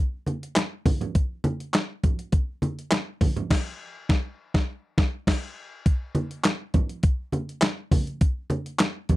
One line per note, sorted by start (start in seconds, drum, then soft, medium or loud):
0.27 closed hi-hat medium
0.27 high conga medium
0.43 closed hi-hat medium
0.56 snare loud
0.56 clap medium
0.56 closed hi-hat medium
0.56 muted conga soft
0.86 kick medium
0.86 open hi-hat medium
0.86 muted conga soft
0.86 high conga medium
0.86 low conga medium
1.01 closed hi-hat medium
1.01 low conga medium
1.15 kick loud
1.15 closed hi-hat medium
1.15 muted conga soft
1.44 closed hi-hat medium
1.44 muted conga soft
1.44 high conga medium
1.60 closed hi-hat medium
1.74 snare loud
1.74 clap medium
1.74 closed hi-hat medium
2.03 kick medium
2.03 closed hi-hat medium
2.03 low conga medium
2.19 closed hi-hat medium
2.32 kick loud
2.32 closed hi-hat medium
2.32 muted conga soft
2.62 closed hi-hat medium
2.62 muted conga soft
2.62 high conga medium
2.79 closed hi-hat medium
2.91 snare loud
2.91 clap medium
2.91 closed hi-hat medium
2.91 muted conga soft
3.21 kick loud
3.21 open hi-hat medium
3.21 high conga medium
3.21 low conga medium
3.36 closed hi-hat medium
3.36 low conga medium
3.50 kick loud
3.50 snare medium
3.50 crash medium
4.09 kick loud
4.09 snare loud
4.54 kick loud
4.54 snare loud
4.98 kick loud
4.98 snare loud
5.27 kick medium
5.27 snare loud
5.27 crash medium
5.86 kick loud
5.86 closed hi-hat medium
6.15 closed hi-hat medium
6.15 high conga medium
6.31 closed hi-hat medium
6.44 snare loud
6.44 clap medium
6.44 closed hi-hat medium
6.44 muted conga soft
6.74 kick medium
6.74 closed hi-hat medium
6.74 muted conga soft
6.74 low conga medium
6.89 closed hi-hat medium
7.03 kick loud
7.03 closed hi-hat medium
7.32 closed hi-hat medium
7.32 muted conga soft
7.32 high conga medium
7.49 closed hi-hat medium
7.62 snare loud
7.62 clap medium
7.62 closed hi-hat medium
7.62 muted conga soft
7.91 kick medium
7.91 open hi-hat medium
7.91 muted conga soft
7.91 high conga medium
7.91 low conga medium
8.07 closed hi-hat medium
8.21 kick loud
8.21 closed hi-hat medium
8.21 muted conga soft
8.50 closed hi-hat medium
8.50 high conga medium
8.66 closed hi-hat medium
8.79 snare loud
8.79 clap medium
8.79 closed hi-hat medium
8.79 muted conga soft
9.09 kick medium
9.09 closed hi-hat medium
9.09 muted conga soft
9.09 low conga medium